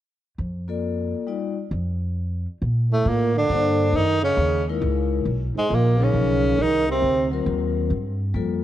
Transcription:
0.38 F2
0.68 A#3 F4 A4 D5
1.27 G3 D#4 F4 D5
1.71 F2
2.62 A#2
2.91 A2 A3
3.05 A2 A#2 A#3
3.35 D3 D4
3.49 G2 A#3 D4 A4 C5
3.93 F#2 D#3
3.97 D#4
4.22 C#3 C#4
4.37 D#2
4.68 G#3 D#4 E4 A#4
4.81 C#2
5.25 B1
5.55 G#2 G#3, muted upright bass stroke
5.70 A#1 A#2
5.75 A#3
6.00 C#3 F3 C#4 D#4 A#4
6.14 B1
6.58 C2 D#3
6.63 D#4
6.89 C3 C4
7.02 D2
7.31 F#3 C4 F4 A#4
7.46 D#2
7.90 G2
8.34 F2 G3 A#3 F4 A4

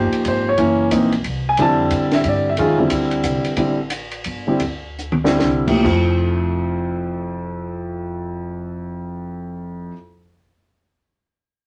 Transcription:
Already playing: G1 F3 A#3 D#4 G4 C5
0.13 ride
0.25 G#1 C5, kick, ride
0.49 C#5
0.58 F#1 E3 A#3 C#4 E4, kick, ride
0.91 A#1 E3 A#3 C4 D#4, kick, hi-hat pedal, ride
1.12 ride
1.24 C2, kick, ride
1.49 G#5
1.57 F2 D3 G3 C4 E4, kick, ride
1.62 A5
1.91 A2, kick, hi-hat pedal, ride
2.11 E5, snare, ride
2.24 G2, kick, ride
2.28 D5
2.49 E5
2.57 F2 D#3 G#3 C#4 F4, kick, ride
2.78 D3 G3 C4 E4
2.90 D2, kick, hi-hat pedal, ride
3.11 ride
3.23 C2, kick, hi-hat pedal, ride
3.45 muted upright bass stroke, ride
3.56 A1 D3 G3 C4 E4, kick, ride
3.90 hi-hat pedal, ride
4.11 ride
4.24 G1, ride
4.47 D3 G3 C4 E4
4.60 D2, kick, ride
4.99 hi-hat pedal
5.12 mid tom
5.24 D3 G3 C4 E4, snare
5.39 C2, snare
5.67 A2 F3 A#3 E4 G4, kick, crash
5.83 F1 F2 F3 A3 E4, kick, crash

